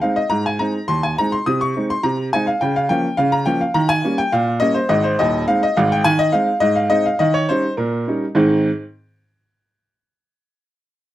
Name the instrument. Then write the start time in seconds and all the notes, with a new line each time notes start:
upright piano
0.02 G#3 C4 D#4 F5
0.16 D#5
0.30 G#2 A#5
0.46 G#5
0.59 G#3 C4 D#4 A#5
0.88 D#2 C6
1.03 G#5
1.18 G#3 C4 D#4 A#5
1.32 C6
1.46 C3 D#6
1.61 C#6
1.76 G#3 C4 D#4
1.90 C6
2.03 C3 A#5
2.33 G#3 C4 D#4 G#5
2.47 F5
2.61 C#3 G5
2.76 F5
2.89 F3 A#3 C#4 G5
3.17 C#3 F5
3.32 A#5
3.46 F3 A#3 C#4 G5
3.61 F5
3.74 D#3 A#5
3.89 G#5
4.04 G3 A#3 C#4
4.18 G5
4.32 A#2 F5
4.60 G3 A#3 C#4 D#5
4.74 C5
4.89 G#1 G#2 D#5
5.04 C5
5.19 D#1 D#2 D#5
5.48 G#3 C4 D#4 F5
5.63 D#5
5.77 G#1 G#2 F5
5.92 G5
6.04 D#3 G#5
6.19 D#5
6.32 G#3 C4 D#4 F5
6.60 G#2 D#5
6.76 F5
6.90 G#3 C4 D#4 D#5
7.06 F5
7.19 D#3 D#5
7.34 C#5
7.49 G3 C#4 D#4 C5
7.77 A#2 A#4
8.07 G3 C#4 D#4
8.35 G#2 D#3 C4 D#4 G#4